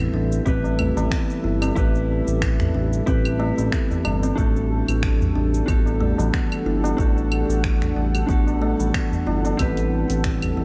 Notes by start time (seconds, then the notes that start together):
Already playing: G3 C4 E4 G4 A4 B4 E5 F#5
0.14 A1 D4
0.32 shaker
0.46 A1 C4 E4 G4 B4, kick, shaker
0.64 tabla na, shaker
0.78 A3, tabla tin, tabla ge, claves
0.97 A1 E3, tabla na, tabla tin, shaker
1.11 B3, finger snap, kick, shaker
1.30 shaker
1.44 G1 E4
1.62 C4, tabla na, claves, shaker
1.76 A1 A3 E4 G4 B4, kick, shaker
1.95 tabla tin, shaker
2.27 A1, shaker
2.42 finger snap, kick, claves, shaker
2.60 finger snap, tabla ge, shaker
2.74 A1 D4
2.93 shaker
3.06 A1 C4 E4 G4 B4, kick, shaker
3.25 claves, shaker
3.39 A3, tabla na, tabla tin
3.58 A1 E3, shaker
3.72 B3, finger snap, kick, shaker
3.90 tabla tin, tabla ge, shaker
4.04 G1 E4, tabla na, tabla tin, claves
4.23 C4, tabla na, shaker
4.36 A1 A3 D4 F#4 G4 A4, kick, shaker
4.56 tabla tin, shaker
4.69 D4
4.88 A1, claves, shaker
5.03 finger snap, kick, shaker
5.21 tabla ge, shaker
5.36 A1 D4
5.54 shaker
5.66 A1 B3 D4 F#4 G4 A4, kick, claves, shaker
5.82 F#5
5.86 tabla na, shaker
6.00 A3, tabla tin, tabla ge
6.18 A1 E3, tabla na, tabla tin, shaker
6.33 B3, finger snap, kick, shaker
6.52 claves, shaker
6.66 G1 E4
6.84 B3, tabla na, shaker
6.97 A1 A3 D4 F#4 G4 A4, kick, shaker
7.17 tabla tin, shaker
7.32 claves
7.49 A1, shaker
7.64 finger snap, kick, tabla na, shaker
7.82 finger snap, tabla ge, shaker
7.96 A1 D4
8.15 claves, shaker
8.27 A1 B3 D4 F#4 G4, kick, shaker
8.31 A4
8.47 tabla na, shaker
8.62 A3, tabla na, tabla tin
8.80 A1 E3, shaker
8.94 B3, finger snap, kick, claves, shaker
9.12 tabla tin, tabla ge, shaker
9.27 G1 E4, tabla na, tabla tin
9.45 B3, tabla na, shaker
9.57 A1 A3 C4 E4 G4, kick, open hi-hat, claves, shaker
9.61 B4
9.77 open hi-hat, tabla tin, shaker
10.10 A1, open hi-hat, shaker
10.24 finger snap, kick, open hi-hat, shaker
10.42 open hi-hat, tabla ge, claves, shaker
10.57 A1 A3